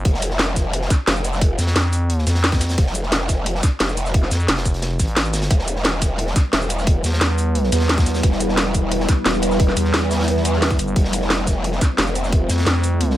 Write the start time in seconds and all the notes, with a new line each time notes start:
0.05 F1, kick, closed hi-hat
0.14 snare
0.22 closed hi-hat, shaker
0.30 snare
0.38 snare, closed hi-hat
0.56 kick, snare, closed hi-hat, shaker
0.73 closed hi-hat
0.82 snare
0.90 kick, snare, closed hi-hat, shaker
1.07 F1, snare, closed hi-hat
1.16 shaker
1.24 closed hi-hat, shaker
1.33 snare, shaker
1.41 kick, closed hi-hat
1.58 F2, snare, closed hi-hat, shaker
1.67 snare, closed hi-hat
1.76 F2, snare, closed hi-hat
1.93 closed hi-hat, open hi-hat, shaker
2.10 closed hi-hat
2.18 snare
2.27 F2, snare, closed hi-hat, shaker
2.35 snare, closed hi-hat
2.44 snare, closed hi-hat
2.52 kick, snare, closed hi-hat, shaker
2.60 snare, closed hi-hat, shaker
2.69 snare, closed hi-hat, shaker
2.78 F1, kick, closed hi-hat
2.87 snare
2.94 closed hi-hat, shaker
3.03 snare
3.12 snare, closed hi-hat
3.29 kick, snare, closed hi-hat, shaker
3.46 closed hi-hat
3.55 snare
3.63 kick, snare, closed hi-hat, shaker
3.80 F1, snare, closed hi-hat
3.89 shaker
3.97 closed hi-hat, shaker
4.05 snare, shaker
4.14 kick, closed hi-hat
4.23 snare
4.31 F2, snare, closed hi-hat, shaker
4.40 shaker
4.48 F1, snare, closed hi-hat
4.57 snare, closed hi-hat
4.65 kick, open hi-hat, shaker
4.74 snare, closed hi-hat
4.82 snare, closed hi-hat
4.99 A1, kick, snare, closed hi-hat, shaker
5.07 closed hi-hat
5.16 snare, closed hi-hat
5.25 shaker
5.33 snare, closed hi-hat, shaker
5.42 snare, closed hi-hat, shaker
5.50 E1 G3 B3 E4 B4, kick, closed hi-hat
5.59 snare
5.68 closed hi-hat, shaker
5.76 snare
5.84 snare, closed hi-hat
6.02 kick, snare, closed hi-hat, shaker
6.18 closed hi-hat
6.27 snare
6.36 kick, snare, closed hi-hat, shaker
6.53 E1, snare, closed hi-hat
6.61 shaker
6.70 closed hi-hat, shaker
6.79 snare, shaker
6.87 kick, closed hi-hat
7.04 E2, snare, closed hi-hat, shaker
7.13 snare, closed hi-hat
7.21 E2, snare, closed hi-hat
7.38 closed hi-hat, open hi-hat, shaker
7.55 closed hi-hat
7.64 snare
7.72 E2, snare, closed hi-hat, shaker
7.80 snare, closed hi-hat
7.88 snare, closed hi-hat
7.97 kick, snare, closed hi-hat, shaker
8.06 snare, closed hi-hat, shaker
8.14 snare, closed hi-hat, shaker
8.23 E1, kick, closed hi-hat
8.32 snare
8.40 closed hi-hat, shaker
8.49 snare
8.57 snare, closed hi-hat
8.74 kick, closed hi-hat, shaker
8.92 closed hi-hat
9.00 snare
9.09 kick, snare, closed hi-hat, shaker
9.25 E1, snare, closed hi-hat
9.34 shaker
9.42 closed hi-hat, shaker
9.51 snare, shaker
9.60 kick, closed hi-hat
9.68 snare
9.77 E2, closed hi-hat, shaker
9.85 snare
9.94 E2, snare, closed hi-hat
10.11 snare, closed hi-hat, open hi-hat, shaker
10.19 snare, closed hi-hat
10.23 snare, closed hi-hat
10.28 closed hi-hat
10.37 snare
10.45 closed hi-hat, shaker
10.53 snare
10.62 snare, closed hi-hat, open hi-hat
10.71 kick, shaker
10.79 G1, closed hi-hat, shaker
10.88 shaker
10.96 F1 A3 C4 F4 C5, kick, closed hi-hat
11.04 snare
11.13 closed hi-hat, shaker
11.22 snare
11.30 snare, closed hi-hat
11.47 kick, snare, closed hi-hat, shaker
11.64 closed hi-hat
11.72 snare
11.81 kick, snare, closed hi-hat, shaker
11.97 F1, snare, closed hi-hat
12.07 shaker
12.15 closed hi-hat, shaker
12.24 snare, shaker
12.32 kick, closed hi-hat
12.49 F2, snare, closed hi-hat, shaker
12.58 snare, closed hi-hat
12.66 F2, snare, closed hi-hat
12.84 closed hi-hat, open hi-hat, shaker
13.01 closed hi-hat
13.10 snare